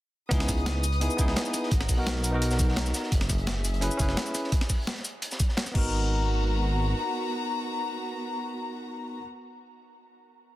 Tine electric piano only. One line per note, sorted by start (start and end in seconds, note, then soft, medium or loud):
0.29 0.83 B3 loud
0.29 0.83 D#4 medium
0.29 0.84 E4 medium
0.33 0.85 G#4 loud
1.00 1.16 B3 medium
1.00 1.17 D#4 medium
1.00 1.17 E4 medium
1.00 1.18 G#4 medium
1.17 1.69 B3 medium
1.17 1.70 D#4 medium
1.17 1.71 E4 medium
1.21 1.72 G#4 loud
1.97 2.30 B3 medium
1.97 2.31 D#4 medium
1.97 2.31 F#4 medium
1.97 2.32 A#4 medium
2.31 3.10 B3 medium
2.31 3.11 D#4 medium
2.31 3.11 F#4 medium
2.36 3.12 A#4 loud
3.81 3.96 C#4 medium
3.81 3.97 E4 medium
3.81 3.98 G#4 medium
3.81 3.98 B4 loud
3.97 4.50 C#4 medium
3.97 4.51 E4 medium
3.97 4.52 G#4 medium
4.02 4.52 B4 loud
5.72 9.18 B3 medium
5.72 9.20 D#4 medium
5.76 9.22 F#4 medium
5.76 9.25 A#4 loud